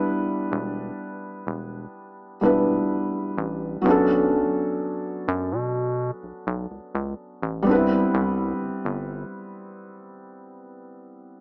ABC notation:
X:1
M:4/4
L:1/16
Q:1/4=63
K:Bm
V:1 name="Felt piano"
[G,B,DEB]8- [G,B,DEB]2 [G,B,DEB]6 | [F,B,CDA]16 | [G,B,=CDEB]16 |]
V:2 name="Analog synth bass" clef=bass
z2 E,,,2 z2 E,,,2 z2 E,,,2 z2 A,,,2 | B,,,3 z3 F,, B,,3 B,,, B,,, C,, C,, z A,,, | =C,,2 C,,2 G,,, G,,,2 z8 z |]